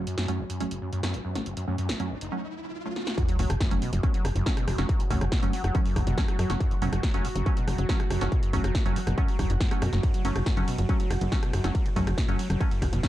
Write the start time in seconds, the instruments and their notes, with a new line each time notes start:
Already playing: synth drone F#3 F#4, riser
0.07 acid bass F#2, closed hi-hat
0.18 acid bass F#2, snare, closed hi-hat
0.28 acid bass F#2, synth stab F#3 A3 C#4, closed hi-hat
0.39 acid bass F#1
0.50 acid bass F#2, closed hi-hat
0.60 acid bass F#1, synth stab F#3 A3 C#4, closed hi-hat
0.71 acid bass F#1, closed hi-hat
0.82 acid bass F#2
0.93 acid bass F#2, closed hi-hat
1.03 acid bass F#2, synth stab F#3 A3 C#4, snare, closed hi-hat
1.14 acid bass F#1, closed hi-hat
1.25 acid bass F#2
1.35 acid bass F#1, synth stab F#3 A3 C#4, snare, closed hi-hat
1.46 acid bass F#1, closed hi-hat
1.57 acid bass F#2, closed hi-hat
1.68 acid bass F#2, synth stab F#3 A3 C#4
1.78 acid bass F#2, closed hi-hat
1.89 acid bass F#1, snare, closed hi-hat
2.00 acid bass F#2, synth stab F#3 A3 C#4, closed hi-hat
2.10 acid bass F#1
2.21 acid bass F#1, closed hi-hat
2.32 synth stab F#3 A3 C#4
2.85 synth stab F#3 A3 C#4
2.96 snare
3.07 snare
3.18 acid bass F#2, synth drone F#3 F#4, kick, closed hi-hat, sub drop
3.28 acid bass F#3, closed hi-hat
3.39 analog synth bass F#1, synth stab F#3 A3 C#4, acid bass F#3, open hi-hat
3.50 analog synth bass F#1, acid bass F#2, cross-stick, closed hi-hat
3.60 acid bass F#2, kick, snare, closed hi-hat
3.71 analog synth bass F#1, synth stab F#3 A3 C#4, acid bass A3, closed hi-hat
3.82 acid bass B2, open hi-hat
3.93 analog synth bass F#1, acid bass F#2, closed hi-hat
4.03 synth stab F#3 A3 C#4, acid bass F#3, kick, closed hi-hat
4.14 acid bass F#3, closed hi-hat
4.25 analog synth bass F#1, acid bass F#2, cross-stick, open hi-hat
4.35 analog synth bass F#1, acid bass F#2, closed hi-hat
4.46 synth stab F#3 A3 C#4, acid bass A3, kick, snare, closed hi-hat
4.57 acid bass B2, cross-stick, closed hi-hat
4.68 analog synth bass F#1, acid bass F#2, cross-stick, open hi-hat
4.78 analog synth bass F#1, synth stab F#3 A3 C#4, acid bass F#3, snare, closed hi-hat
4.89 acid bass F#3, kick, closed hi-hat
5.00 acid bass F#2, closed hi-hat
5.10 analog synth bass F#1, acid bass F#2, synth stab F#3 A3 C#4, kick, open hi-hat
5.21 analog synth bass F#1, acid bass A3, cross-stick, closed hi-hat
5.32 acid bass B2, kick, snare, closed hi-hat
5.43 analog synth bass F#1, acid bass F#2, synth stab F#3 A3 C#4, closed hi-hat
5.53 acid bass F#3, open hi-hat
5.64 analog synth bass F#1, acid bass F#3, cross-stick, closed hi-hat
5.75 acid bass F#2, synth stab F#3 A3 C#4, kick, closed hi-hat
5.86 acid bass F#2, open hi-hat
5.96 analog synth bass F#1, acid bass A3, kick, cross-stick, open hi-hat
6.07 analog synth bass F#1, acid bass B2, closed hi-hat
6.18 acid bass F#2, synth stab F#3 A3 C#4, kick, snare, closed hi-hat
6.28 acid bass F#3, cross-stick, closed hi-hat
6.39 analog synth bass F#2, acid bass F#3, cross-stick, open hi-hat
6.50 analog synth bass F#1, acid bass F#2, synth stab F#3 A3 C#4, snare, closed hi-hat
6.60 acid bass F#2, kick, closed hi-hat
6.71 acid bass A3, closed hi-hat
6.82 analog synth bass F#1, acid bass B2, synth stab F#3 A3 C#4, open hi-hat
6.93 analog synth bass F#1, acid bass F#2, cross-stick, closed hi-hat
7.03 acid bass F#3, kick, snare, closed hi-hat
7.14 analog synth bass F#1, acid bass F#3, synth stab F#3 A3 C#4, closed hi-hat
7.25 acid bass F#2, open hi-hat
7.35 analog synth bass F#1, acid bass F#2, closed hi-hat
7.46 synth stab F#3 A3 C#4, acid bass A3, kick, closed hi-hat
7.57 acid bass B2, closed hi-hat
7.68 analog synth bass F#1, acid bass F#2, cross-stick, open hi-hat
7.78 analog synth bass F#1, acid bass F#3, closed hi-hat
7.89 acid bass F#3, synth stab F#3 A3 C#4, kick, snare, closed hi-hat
8.00 acid bass F#2, cross-stick, closed hi-hat
8.10 analog synth bass F#1, acid bass F#2, cross-stick, open hi-hat
8.21 analog synth bass F#1, synth stab F#3 A3 C#4, acid bass A3, snare, closed hi-hat
8.32 acid bass B2, kick, closed hi-hat
8.43 acid bass F#2, closed hi-hat
8.53 analog synth bass F#1, acid bass F#3, synth stab F#3 A3 C#4, kick, open hi-hat
8.64 analog synth bass F#1, acid bass F#3, cross-stick, closed hi-hat
8.75 acid bass F#2, kick, snare, closed hi-hat
8.85 analog synth bass F#1, acid bass F#2, synth stab F#3 A3 C#4, closed hi-hat
8.96 acid bass A3, open hi-hat
9.07 analog synth bass F#1, acid bass B2, cross-stick, closed hi-hat
9.18 acid bass F#2, synth stab F#3 A3 C#4, kick, closed hi-hat
9.28 acid bass F#3, open hi-hat
9.39 analog synth bass F#1, acid bass F#3, kick, cross-stick, open hi-hat
9.50 analog synth bass F#1, acid bass F#2, closed hi-hat
9.60 acid bass F#2, kick, snare, closed hi-hat
9.71 synth stab F#3 A3 C#4, acid bass A3, cross-stick, closed hi-hat
9.82 analog synth bass F#2, acid bass B2, cross-stick, open hi-hat
9.93 analog synth bass F#1, acid bass F#2, snare, closed hi-hat
10.03 acid bass F#2, kick, closed hi-hat, ride
10.14 acid bass F#3, closed hi-hat, ride
10.25 analog synth bass F#1, acid bass F#3, synth stab F#3 A3 C#4, open hi-hat, ride
10.35 analog synth bass F#1, acid bass F#2, cross-stick, closed hi-hat, ride
10.46 acid bass F#2, kick, snare, closed hi-hat, ride
10.57 analog synth bass F#1, synth stab F#3 A3 C#4, acid bass A3, closed hi-hat, ride
10.68 acid bass B2, open hi-hat, ride
10.78 analog synth bass F#1, acid bass F#2, closed hi-hat, ride
10.89 synth stab F#3 A3 C#4, acid bass F#3, kick, closed hi-hat, ride
11.00 acid bass F#3, closed hi-hat, ride
11.10 analog synth bass F#1, acid bass F#2, cross-stick, open hi-hat, ride
11.21 analog synth bass F#1, acid bass F#2, closed hi-hat, ride
11.32 synth stab F#3 A3 C#4, acid bass A3, kick, snare, closed hi-hat, ride
11.43 acid bass B2, cross-stick, closed hi-hat, ride
11.53 analog synth bass F#1, acid bass F#2, cross-stick, open hi-hat, ride
11.64 analog synth bass F#1, synth stab F#3 A3 C#4, acid bass F#3, snare, closed hi-hat, ride
11.75 acid bass F#3, kick, closed hi-hat, ride
11.86 acid bass F#2, closed hi-hat, ride
11.96 analog synth bass F#1, acid bass F#2, synth stab F#3 A3 C#4, kick, open hi-hat, ride
12.07 analog synth bass F#1, acid bass A3, cross-stick, closed hi-hat, ride
12.18 acid bass B2, kick, snare, closed hi-hat, ride
12.28 analog synth bass F#1, acid bass F#2, synth stab F#3 A3 C#4, closed hi-hat, ride
12.39 acid bass F#3, open hi-hat, ride
12.50 analog synth bass F#1, acid bass F#3, cross-stick, closed hi-hat, ride
12.60 acid bass F#2, synth stab F#3 A3 C#4, kick, closed hi-hat, ride
12.71 acid bass F#2, open hi-hat, ride
12.82 analog synth bass F#1, acid bass A3, kick, cross-stick, open hi-hat, ride
12.93 analog synth bass F#1, acid bass B2, closed hi-hat, ride
13.03 synth stab F#3 A3 C#4, kick, snare, closed hi-hat, ride